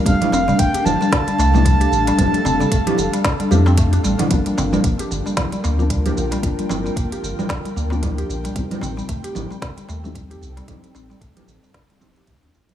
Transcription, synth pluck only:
X:1
M:4/4
L:1/16
Q:"Swing 16ths" 1/4=113
K:Gm
V:1 name="Synth pluck" clef=bass
G, G, C G, A, G D, G, D, G, A, A, G, G D, G, | G, G, C G, A, G D, G, D, G, G C A, D G, D, | G, G, C G, B, G D, G, D, G, B, B, G, G D, G, | G, G, C G, B, G D, G, D, G, B, B, G, G D, G, |
G, G, C G, A, G D, G, D, G, A, A, G, G D, G, | G, G, C G, A, G D, G, D, G, C G A, D F G, |]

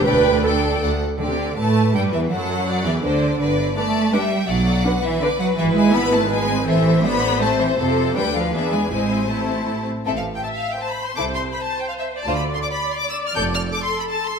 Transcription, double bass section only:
X:1
M:3/4
L:1/8
Q:1/4=164
K:G
V:1 name="Double bass section" clef=bass
D,,4 D,, z | D,,2 A,,2 G,, E,, | F,,3 E,, D,,2 | G,,,2 z4 |
B,,,2 z4 | [K:Am] ^G,,,6 | A,,,6 | F,,2 D,,2 E,,2 |
A,,,4- A,,, z | A,,,2 z4 | C,,2 z4 | D,,2 z4 |
F,,,2 z4 |]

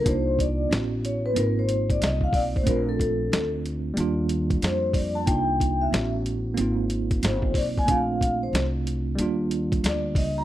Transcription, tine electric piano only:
X:1
M:4/4
L:1/8
Q:"Swing 16ths" 1/4=92
K:Bb
V:1 name="Tine electric piano"
[B,DEF]2 [=B,^C=E^F]2 [_B,=C_E=F]4 | [A,CDF]4 [G,B,DF]4 | [B,DEF]2 [=B,^C=E^F]2 [_B,=C_E=F]4 | [A,CDF]4 [G,B,DF]4 |]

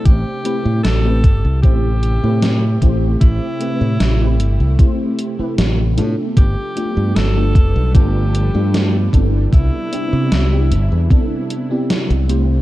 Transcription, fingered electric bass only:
X:1
M:4/4
L:1/16
Q:1/4=76
K:Am
V:1 name="Fingered electric bass" clef=bass
A,,, z2 A,, A,,,2 G,,, C,, A,,,3 A,,3 A,,,2 | A,,, z2 A,, A,,,2 G,,, C,, z4 A,,,2 A,, z | G,,, z2 G,, G,,,2 F,,, B,,, G,,,3 G,,3 G,,,2 | C,, z2 C, C,,2 G,,, E,, z4 z C,,3 |]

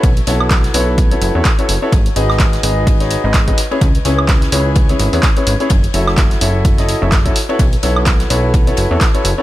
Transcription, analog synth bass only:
X:1
M:4/4
L:1/16
Q:"Swing 16ths" 1/4=127
K:Bmix
V:1 name="Analog synth bass" clef=bass
B,,, z B,,,3 z B,,,3 z F,,, E,, z2 F,,, z | G,,, z G,,,3 z G,,,4 z G,,,2 z3 | C,, z C,,3 z C,,3 z G,,, E,, z2 G,,, z | F,,, z F,,,3 z F,,,4 z F,,,2 z3 |
B,,, z B,,,3 z B,,,3 z F,,, E,, z2 F,,, z |]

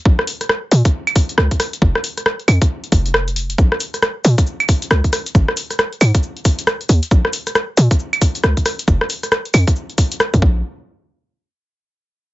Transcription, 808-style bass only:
X:1
M:4/4
L:1/16
Q:"Swing 16ths" 1/4=136
K:Bbm
V:1 name="808-style bass" clef=bass
B,,, z4 z B,, z4 z D,, z3 | F,,, z4 z F,, z3 F,,,6 | B,,, z4 z B,, z4 z D,, z3 | A,,, z4 z A,, z6 z E,, z |
B,,, z4 z B,, z4 z D,, z3 | F,,, z4 z F,, z6 F,, B,,,2 | z16 |]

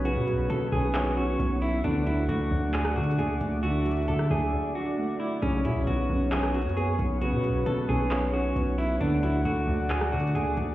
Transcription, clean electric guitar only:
X:1
M:4/4
L:1/8
Q:1/4=134
K:Bdor
V:1 name="Clean electric guitar"
F2 A G2 F2 E | D E F2 G F G z | F2 A G2 F2 E | C E F2 G F G z |
F2 A G2 F2 E | D E F2 G F G z |]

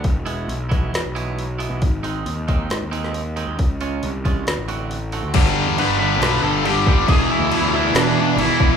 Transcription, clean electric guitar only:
X:1
M:4/4
L:1/8
Q:1/4=137
K:Ephr
V:1 name="Clean electric guitar"
z [E,^G,B,E] z [E,G,B,E] z [E,G,B,E] z [E,G,B,E] | z [_E,_A,C_E] z [E,A,CE] z [E,A,CE] z [E,A,CE] | z [^C,^G,^C^E] z [C,G,CE] z [D,A,=C^F] z [D,A,CF] | z8 |
z8 |]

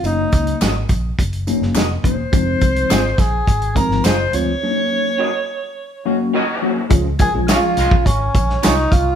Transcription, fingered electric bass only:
X:1
M:4/4
L:1/16
Q:1/4=105
K:Db
V:1 name="Fingered electric bass" clef=bass
G,,,2 D,,2 A,,,2 B,,,2 G,,,3 G,,, F,,,2 _F,,,2 | F,,,2 C,,2 A,,,2 B,,,2 A,,,3 A,,, G,,,2 =D,,2 | z16 | D,,3 B,,,2 z C,, B,,, A,,,2 B,,,2 C,,2 C,,2 |]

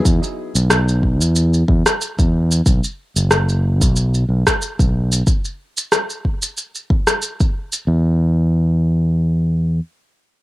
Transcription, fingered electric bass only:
X:1
M:4/4
L:1/16
Q:"Swing 16ths" 1/4=92
K:B
V:1 name="Fingered electric bass" clef=bass
E,, z2 B,,,4 E,,3 E,, z2 E,,3 | B,,, z2 F,,,4 B,,,3 B,,, z2 B,,,3 | z16 | E,,12 z4 |]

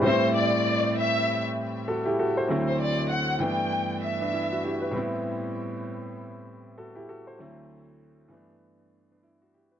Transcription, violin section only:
X:1
M:4/4
L:1/16
Q:"Swing 16ths" 1/4=98
K:Ador
V:1 name="Violin section"
c2 d4 e3 z6 z | z c d2 f2 g4 e6 | z16 | z16 |]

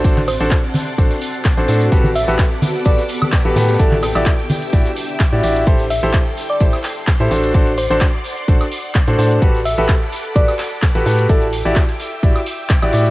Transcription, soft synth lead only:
X:1
M:4/4
L:1/16
Q:"Swing 16ths" 1/4=128
K:Ador
V:1 name="Soft synth lead"
z2 c c z12 | z2 e e z4 d z6 z | A4 z12 | z2 e e z3 d z8 |
z2 c c z12 | z2 e e z4 d z6 z | A4 z12 |]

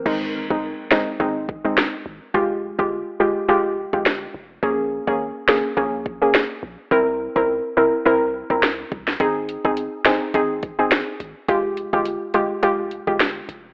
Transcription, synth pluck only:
X:1
M:4/4
L:1/16
Q:"Swing 16ths" 1/4=105
K:Fm
V:1 name="Synth pluck"
[A,CE]3 [A,CE] z2 [A,CE] z [A,CE] z2 [A,CE] z4 | [A,FG]3 [A,FG] z2 [A,FG] z [A,FG] z2 [A,FG] z4 | [B,DA]3 [B,DA] z2 [B,DA] z [B,DA] z2 [B,DA] z4 | [C=EB]3 [CEB] z2 [CEB] z [CEB] z2 [CEB] z4 |
[CEA]3 [CEA] z2 [CEA] z [CEA] z2 [CEA] z4 | [A,FG]3 [A,FG] z2 [A,FG] z [A,FG] z2 [A,FG] z4 |]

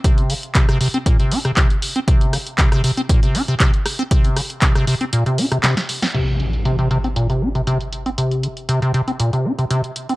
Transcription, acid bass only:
X:1
M:4/4
L:1/16
Q:1/4=118
K:Cm
V:1 name="Acid bass" clef=bass
C,2 D, z C, C, C, C B,, C, E C, C, z2 C | C,2 D, z C, C, C, C B,, C, E C, C, z2 C | C,2 D, z C, C, C, C B,, C, E C, C, z2 C | C,2 D, z C, C, C, C B,, C, E C, C, z2 C |
C,2 D, z C, C, C, C B,, C, E C, C, z2 C |]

